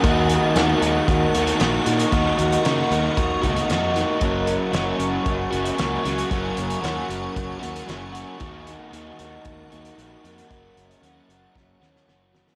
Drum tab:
HH |x-x-x-x-x-xxx-xx|x-xxx-x-x-xxx-x-|x-x-x-x-x-xxx-xx|x-xxx-x-x-xxx-x-|
SD |----o-------o---|----o-------o-o-|----o-------o-o-|----o-------o---|
BD |o-------o-------|o-------o-o-----|o-------o-------|o-------o-------|

HH |x-x-x-x-x-xxx-xx|x-xxx-x---------|
SD |----------------|--------o-ooo-oo|
BD |o-------o-------|o-------o-------|